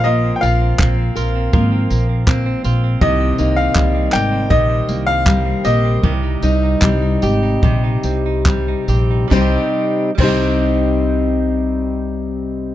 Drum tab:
CC |--------|--------|--------|--x-----|
TB |-x-x-x-x|-x-x-x-x|-x-x-x-x|--------|
CP |--x---x-|--xx--x-|--x---x-|--------|
SD |--------|--------|--------|o-------|
BD |--o-o-o-|o-o-o-o-|o-o-o-o-|o-o-----|